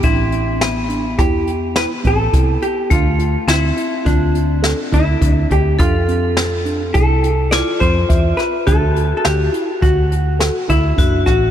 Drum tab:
HH |xxxxxxxxxx|xxxxxxxxxx|xxxxxxxxxx|xxxxxxxxxx|
SD |--o-o-o-o-|--o---o---|--o---o--o|--o---o--o|
BD |o---o--oo-|o---o--ooo|o---o--oo-|o---o--ooo|